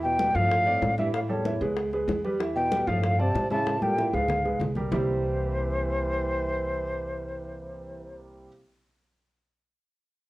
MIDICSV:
0, 0, Header, 1, 6, 480
1, 0, Start_track
1, 0, Tempo, 314795
1, 1734, Time_signature, 4, 2, 24, 8
1, 15696, End_track
2, 0, Start_track
2, 0, Title_t, "Flute"
2, 0, Program_c, 0, 73
2, 37, Note_on_c, 0, 79, 96
2, 533, Note_on_c, 0, 77, 111
2, 555, Note_off_c, 0, 79, 0
2, 1488, Note_off_c, 0, 77, 0
2, 1497, Note_on_c, 0, 76, 86
2, 1719, Note_off_c, 0, 76, 0
2, 1732, Note_on_c, 0, 77, 96
2, 1824, Note_off_c, 0, 77, 0
2, 1973, Note_on_c, 0, 73, 72
2, 2645, Note_off_c, 0, 73, 0
2, 3896, Note_on_c, 0, 79, 89
2, 4379, Note_on_c, 0, 77, 90
2, 4402, Note_off_c, 0, 79, 0
2, 4865, Note_on_c, 0, 81, 90
2, 4888, Note_off_c, 0, 77, 0
2, 5337, Note_off_c, 0, 81, 0
2, 5346, Note_on_c, 0, 81, 104
2, 5828, Note_on_c, 0, 79, 94
2, 5851, Note_off_c, 0, 81, 0
2, 6317, Note_on_c, 0, 77, 82
2, 6340, Note_off_c, 0, 79, 0
2, 7028, Note_off_c, 0, 77, 0
2, 7509, Note_on_c, 0, 72, 97
2, 12497, Note_off_c, 0, 72, 0
2, 15696, End_track
3, 0, Start_track
3, 0, Title_t, "Grand piano"
3, 0, Program_c, 1, 0
3, 0, Note_on_c, 1, 52, 76
3, 0, Note_on_c, 1, 64, 76
3, 0, Note_on_c, 1, 76, 78
3, 214, Note_off_c, 1, 52, 0
3, 216, Note_off_c, 1, 64, 0
3, 217, Note_off_c, 1, 76, 0
3, 300, Note_on_c, 1, 55, 61
3, 309, Note_on_c, 1, 67, 62
3, 310, Note_on_c, 1, 71, 65
3, 493, Note_off_c, 1, 55, 0
3, 498, Note_off_c, 1, 67, 0
3, 499, Note_off_c, 1, 71, 0
3, 528, Note_on_c, 1, 53, 80
3, 540, Note_on_c, 1, 65, 77
3, 542, Note_on_c, 1, 77, 79
3, 924, Note_off_c, 1, 53, 0
3, 931, Note_off_c, 1, 65, 0
3, 932, Note_off_c, 1, 77, 0
3, 1008, Note_on_c, 1, 60, 69
3, 1012, Note_on_c, 1, 72, 68
3, 1016, Note_on_c, 1, 74, 75
3, 1404, Note_off_c, 1, 60, 0
3, 1406, Note_off_c, 1, 72, 0
3, 1409, Note_off_c, 1, 74, 0
3, 1496, Note_on_c, 1, 52, 91
3, 1510, Note_on_c, 1, 64, 80
3, 1511, Note_on_c, 1, 76, 83
3, 1890, Note_off_c, 1, 52, 0
3, 1897, Note_off_c, 1, 64, 0
3, 1898, Note_off_c, 1, 76, 0
3, 1964, Note_on_c, 1, 55, 74
3, 1966, Note_on_c, 1, 67, 68
3, 1974, Note_on_c, 1, 69, 70
3, 2166, Note_off_c, 1, 55, 0
3, 2167, Note_off_c, 1, 67, 0
3, 2171, Note_off_c, 1, 69, 0
3, 2211, Note_on_c, 1, 52, 72
3, 2223, Note_on_c, 1, 64, 71
3, 2227, Note_on_c, 1, 76, 72
3, 2410, Note_off_c, 1, 52, 0
3, 2417, Note_off_c, 1, 64, 0
3, 2419, Note_off_c, 1, 76, 0
3, 2463, Note_on_c, 1, 56, 76
3, 2465, Note_on_c, 1, 68, 70
3, 2469, Note_on_c, 1, 71, 73
3, 2854, Note_off_c, 1, 56, 0
3, 2855, Note_off_c, 1, 68, 0
3, 2858, Note_off_c, 1, 71, 0
3, 2943, Note_on_c, 1, 56, 69
3, 2949, Note_on_c, 1, 68, 71
3, 2952, Note_on_c, 1, 71, 73
3, 3335, Note_off_c, 1, 56, 0
3, 3338, Note_off_c, 1, 68, 0
3, 3340, Note_off_c, 1, 71, 0
3, 3424, Note_on_c, 1, 55, 68
3, 3431, Note_on_c, 1, 67, 75
3, 3432, Note_on_c, 1, 71, 76
3, 3618, Note_off_c, 1, 55, 0
3, 3622, Note_off_c, 1, 67, 0
3, 3623, Note_off_c, 1, 71, 0
3, 3656, Note_on_c, 1, 52, 73
3, 3660, Note_on_c, 1, 64, 82
3, 3665, Note_on_c, 1, 76, 77
3, 4051, Note_off_c, 1, 52, 0
3, 4053, Note_off_c, 1, 64, 0
3, 4056, Note_off_c, 1, 76, 0
3, 4144, Note_on_c, 1, 55, 62
3, 4152, Note_on_c, 1, 67, 67
3, 4154, Note_on_c, 1, 71, 62
3, 4339, Note_off_c, 1, 55, 0
3, 4344, Note_off_c, 1, 67, 0
3, 4345, Note_off_c, 1, 71, 0
3, 4387, Note_on_c, 1, 53, 86
3, 4394, Note_on_c, 1, 65, 84
3, 4402, Note_on_c, 1, 77, 86
3, 4778, Note_off_c, 1, 53, 0
3, 4782, Note_off_c, 1, 65, 0
3, 4786, Note_off_c, 1, 77, 0
3, 4871, Note_on_c, 1, 60, 75
3, 4871, Note_on_c, 1, 72, 70
3, 4882, Note_on_c, 1, 74, 68
3, 5260, Note_off_c, 1, 60, 0
3, 5260, Note_off_c, 1, 72, 0
3, 5267, Note_off_c, 1, 74, 0
3, 5341, Note_on_c, 1, 52, 82
3, 5351, Note_on_c, 1, 76, 83
3, 5353, Note_on_c, 1, 64, 90
3, 5734, Note_off_c, 1, 52, 0
3, 5740, Note_off_c, 1, 76, 0
3, 5741, Note_off_c, 1, 64, 0
3, 5822, Note_on_c, 1, 55, 67
3, 5822, Note_on_c, 1, 67, 68
3, 5825, Note_on_c, 1, 69, 66
3, 6018, Note_off_c, 1, 55, 0
3, 6018, Note_off_c, 1, 67, 0
3, 6020, Note_off_c, 1, 69, 0
3, 6057, Note_on_c, 1, 52, 77
3, 6064, Note_on_c, 1, 64, 68
3, 6071, Note_on_c, 1, 76, 70
3, 6255, Note_off_c, 1, 52, 0
3, 6259, Note_off_c, 1, 64, 0
3, 6263, Note_off_c, 1, 76, 0
3, 6304, Note_on_c, 1, 56, 66
3, 6309, Note_on_c, 1, 68, 71
3, 6310, Note_on_c, 1, 71, 67
3, 6695, Note_off_c, 1, 56, 0
3, 6698, Note_off_c, 1, 68, 0
3, 6699, Note_off_c, 1, 71, 0
3, 6790, Note_on_c, 1, 56, 68
3, 6795, Note_on_c, 1, 68, 70
3, 6804, Note_on_c, 1, 71, 68
3, 7179, Note_off_c, 1, 56, 0
3, 7182, Note_off_c, 1, 68, 0
3, 7187, Note_off_c, 1, 71, 0
3, 7267, Note_on_c, 1, 55, 71
3, 7272, Note_on_c, 1, 67, 75
3, 7276, Note_on_c, 1, 70, 72
3, 7460, Note_off_c, 1, 55, 0
3, 7463, Note_off_c, 1, 67, 0
3, 7465, Note_off_c, 1, 70, 0
3, 7501, Note_on_c, 1, 48, 77
3, 7504, Note_on_c, 1, 55, 80
3, 7507, Note_on_c, 1, 58, 76
3, 7508, Note_on_c, 1, 60, 76
3, 7512, Note_on_c, 1, 64, 77
3, 7514, Note_on_c, 1, 67, 91
3, 12913, Note_off_c, 1, 48, 0
3, 12916, Note_off_c, 1, 55, 0
3, 12919, Note_off_c, 1, 58, 0
3, 12920, Note_off_c, 1, 60, 0
3, 12923, Note_off_c, 1, 64, 0
3, 12926, Note_off_c, 1, 67, 0
3, 15696, End_track
4, 0, Start_track
4, 0, Title_t, "Trombone"
4, 0, Program_c, 2, 57
4, 54, Note_on_c, 2, 47, 81
4, 554, Note_on_c, 2, 45, 79
4, 577, Note_off_c, 2, 47, 0
4, 1485, Note_off_c, 2, 45, 0
4, 1494, Note_on_c, 2, 43, 74
4, 1717, Note_off_c, 2, 43, 0
4, 1743, Note_on_c, 2, 45, 73
4, 1849, Note_off_c, 2, 45, 0
4, 1987, Note_on_c, 2, 40, 62
4, 2653, Note_off_c, 2, 40, 0
4, 3902, Note_on_c, 2, 47, 76
4, 4393, Note_on_c, 2, 45, 77
4, 4416, Note_off_c, 2, 47, 0
4, 4878, Note_on_c, 2, 48, 86
4, 4901, Note_off_c, 2, 45, 0
4, 5337, Note_off_c, 2, 48, 0
4, 5346, Note_on_c, 2, 49, 84
4, 5815, Note_on_c, 2, 46, 77
4, 5838, Note_off_c, 2, 49, 0
4, 6311, Note_on_c, 2, 44, 64
4, 6334, Note_off_c, 2, 46, 0
4, 7025, Note_off_c, 2, 44, 0
4, 7531, Note_on_c, 2, 52, 69
4, 12508, Note_off_c, 2, 52, 0
4, 15696, End_track
5, 0, Start_track
5, 0, Title_t, "Upright bass"
5, 0, Program_c, 3, 32
5, 0, Note_on_c, 3, 40, 77
5, 440, Note_off_c, 3, 40, 0
5, 530, Note_on_c, 3, 43, 85
5, 1202, Note_off_c, 3, 43, 0
5, 1246, Note_on_c, 3, 45, 85
5, 2367, Note_off_c, 3, 45, 0
5, 2452, Note_on_c, 3, 37, 87
5, 3124, Note_off_c, 3, 37, 0
5, 3167, Note_on_c, 3, 40, 84
5, 4289, Note_off_c, 3, 40, 0
5, 4382, Note_on_c, 3, 43, 92
5, 5051, Note_off_c, 3, 43, 0
5, 5102, Note_on_c, 3, 45, 79
5, 6216, Note_off_c, 3, 45, 0
5, 6302, Note_on_c, 3, 37, 81
5, 6970, Note_off_c, 3, 37, 0
5, 7008, Note_on_c, 3, 36, 69
5, 7437, Note_off_c, 3, 36, 0
5, 7499, Note_on_c, 3, 36, 83
5, 12911, Note_off_c, 3, 36, 0
5, 15696, End_track
6, 0, Start_track
6, 0, Title_t, "Drums"
6, 58, Note_on_c, 9, 63, 33
6, 211, Note_off_c, 9, 63, 0
6, 292, Note_on_c, 9, 60, 50
6, 293, Note_on_c, 9, 63, 89
6, 445, Note_off_c, 9, 60, 0
6, 446, Note_off_c, 9, 63, 0
6, 539, Note_on_c, 9, 63, 33
6, 544, Note_on_c, 9, 60, 31
6, 691, Note_off_c, 9, 63, 0
6, 696, Note_off_c, 9, 60, 0
6, 782, Note_on_c, 9, 63, 32
6, 784, Note_on_c, 9, 60, 66
6, 935, Note_off_c, 9, 63, 0
6, 937, Note_off_c, 9, 60, 0
6, 1019, Note_on_c, 9, 60, 35
6, 1030, Note_on_c, 9, 63, 35
6, 1172, Note_off_c, 9, 60, 0
6, 1183, Note_off_c, 9, 63, 0
6, 1255, Note_on_c, 9, 60, 30
6, 1255, Note_on_c, 9, 61, 84
6, 1258, Note_on_c, 9, 63, 81
6, 1407, Note_off_c, 9, 60, 0
6, 1407, Note_off_c, 9, 61, 0
6, 1410, Note_off_c, 9, 63, 0
6, 1493, Note_on_c, 9, 63, 74
6, 1505, Note_on_c, 9, 60, 35
6, 1645, Note_off_c, 9, 63, 0
6, 1657, Note_off_c, 9, 60, 0
6, 1738, Note_on_c, 9, 60, 68
6, 1739, Note_on_c, 9, 63, 36
6, 1891, Note_off_c, 9, 60, 0
6, 1891, Note_off_c, 9, 63, 0
6, 1980, Note_on_c, 9, 63, 31
6, 2132, Note_off_c, 9, 63, 0
6, 2213, Note_on_c, 9, 63, 84
6, 2219, Note_on_c, 9, 60, 52
6, 2365, Note_off_c, 9, 63, 0
6, 2372, Note_off_c, 9, 60, 0
6, 2458, Note_on_c, 9, 63, 35
6, 2459, Note_on_c, 9, 60, 31
6, 2610, Note_off_c, 9, 63, 0
6, 2612, Note_off_c, 9, 60, 0
6, 2693, Note_on_c, 9, 60, 67
6, 2697, Note_on_c, 9, 63, 33
6, 2845, Note_off_c, 9, 60, 0
6, 2850, Note_off_c, 9, 63, 0
6, 2938, Note_on_c, 9, 63, 37
6, 2944, Note_on_c, 9, 60, 34
6, 3091, Note_off_c, 9, 63, 0
6, 3097, Note_off_c, 9, 60, 0
6, 3173, Note_on_c, 9, 63, 80
6, 3184, Note_on_c, 9, 60, 32
6, 3184, Note_on_c, 9, 61, 84
6, 3326, Note_off_c, 9, 63, 0
6, 3336, Note_off_c, 9, 60, 0
6, 3336, Note_off_c, 9, 61, 0
6, 3422, Note_on_c, 9, 63, 32
6, 3423, Note_on_c, 9, 60, 35
6, 3574, Note_off_c, 9, 63, 0
6, 3575, Note_off_c, 9, 60, 0
6, 3667, Note_on_c, 9, 60, 70
6, 3671, Note_on_c, 9, 63, 32
6, 3819, Note_off_c, 9, 60, 0
6, 3824, Note_off_c, 9, 63, 0
6, 3909, Note_on_c, 9, 63, 30
6, 4061, Note_off_c, 9, 63, 0
6, 4143, Note_on_c, 9, 60, 57
6, 4146, Note_on_c, 9, 63, 84
6, 4295, Note_off_c, 9, 60, 0
6, 4298, Note_off_c, 9, 63, 0
6, 4391, Note_on_c, 9, 60, 31
6, 4397, Note_on_c, 9, 63, 35
6, 4544, Note_off_c, 9, 60, 0
6, 4549, Note_off_c, 9, 63, 0
6, 4630, Note_on_c, 9, 60, 64
6, 4641, Note_on_c, 9, 63, 32
6, 4783, Note_off_c, 9, 60, 0
6, 4793, Note_off_c, 9, 63, 0
6, 4876, Note_on_c, 9, 60, 35
6, 4880, Note_on_c, 9, 63, 35
6, 5029, Note_off_c, 9, 60, 0
6, 5032, Note_off_c, 9, 63, 0
6, 5114, Note_on_c, 9, 60, 32
6, 5114, Note_on_c, 9, 61, 77
6, 5114, Note_on_c, 9, 63, 72
6, 5266, Note_off_c, 9, 60, 0
6, 5266, Note_off_c, 9, 61, 0
6, 5267, Note_off_c, 9, 63, 0
6, 5344, Note_on_c, 9, 63, 75
6, 5360, Note_on_c, 9, 60, 34
6, 5496, Note_off_c, 9, 63, 0
6, 5513, Note_off_c, 9, 60, 0
6, 5582, Note_on_c, 9, 63, 74
6, 5593, Note_on_c, 9, 60, 68
6, 5735, Note_off_c, 9, 63, 0
6, 5745, Note_off_c, 9, 60, 0
6, 5822, Note_on_c, 9, 63, 86
6, 5974, Note_off_c, 9, 63, 0
6, 6076, Note_on_c, 9, 60, 50
6, 6228, Note_off_c, 9, 60, 0
6, 6314, Note_on_c, 9, 60, 28
6, 6466, Note_off_c, 9, 60, 0
6, 6534, Note_on_c, 9, 64, 91
6, 6554, Note_on_c, 9, 60, 61
6, 6687, Note_off_c, 9, 64, 0
6, 6707, Note_off_c, 9, 60, 0
6, 6796, Note_on_c, 9, 60, 35
6, 6948, Note_off_c, 9, 60, 0
6, 7016, Note_on_c, 9, 64, 87
6, 7034, Note_on_c, 9, 60, 32
6, 7034, Note_on_c, 9, 61, 70
6, 7169, Note_off_c, 9, 64, 0
6, 7186, Note_off_c, 9, 60, 0
6, 7186, Note_off_c, 9, 61, 0
6, 7252, Note_on_c, 9, 64, 78
6, 7269, Note_on_c, 9, 60, 36
6, 7405, Note_off_c, 9, 64, 0
6, 7422, Note_off_c, 9, 60, 0
6, 7500, Note_on_c, 9, 64, 88
6, 7506, Note_on_c, 9, 61, 92
6, 7653, Note_off_c, 9, 64, 0
6, 7659, Note_off_c, 9, 61, 0
6, 15696, End_track
0, 0, End_of_file